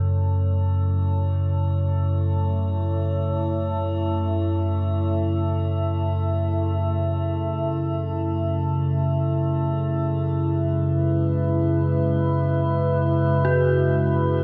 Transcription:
Already playing: synth drone F#2 C#3 A4, analog synth pad A3 E4 C#5 E5
9.92 analog synth pad G#3, synth drone B4
10.41 analog synth pad B4
13.45 synth bell F#4

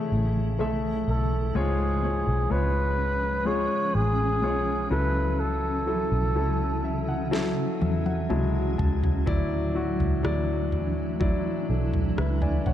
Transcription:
Already playing: ambient pad C#3 E3 A3 E4, grand piano A3 G#4 C#5 E5
0.12 fingered electric bass A1
0.59 fingered electric bass B1, grand piano A3 A4 E5
1.08 fingered electric bass B1, flugelhorn A4
1.55 fingered electric bass C#2, grand piano G#2 G#3 F4 C#5, ambient pad F3 C#4, flugelhorn G#4
2.02 grand piano G#3 F4 C#5
2.27 fingered electric bass B1
2.50 fingered electric bass C#2, grand piano G#3 F4 C#5, flugelhorn B4
3.45 grand piano G#3 F4 G#4, flugelhorn C#5
3.95 fingered electric bass A1, flugelhorn G#4
4.42 fingered electric bass B1, grand piano G#3 F4 C#5
4.90 fingered electric bass C#2, ambient pad C#3 E3 F#3 C#4 E4, grand piano C#3 F#3 E4 A4, flugelhorn B4
5.39 flugelhorn A4
5.86 grand piano F#3 E4 A4
6.12 fingered electric bass B1
6.35 fingered electric bass C#2, grand piano F#3 E4 A4
6.84 ambient pad F#4, grand piano E5
7.08 grand piano F#5
7.31 grand piano F#3 E4 A4 E5, snare
7.81 fingered electric bass E2, grand piano E5, high tom
8.06 grand piano F#5, high tom
8.29 fingered electric bass C#2, grand piano F#3 G#3 E4 A5, mid tom
8.78 fingered electric bass C#2, grand piano A5, floor tom
9.04 floor tom
9.26 fingered electric bass D2, grand piano A2 F#3 E4 D5, ambient pad A3 D4 E4, kick, floor tom
9.74 grand piano F#3 E4 F#4
10.00 fingered electric bass C#2, floor tom
10.23 fingered electric bass D2, grand piano F#3 E4 D5, cross-stick
10.72 floor tom
11.20 grand piano F#3 E4 D5, kick, floor tom
11.69 fingered electric bass B1, grand piano A4 D5
11.94 floor tom
12.18 fingered electric bass C#2, grand piano B4 E5, cross-stick
12.42 grand piano D5 G#5, floor tom
12.66 fingered electric bass B1, grand piano C#5 F#5, floor tom

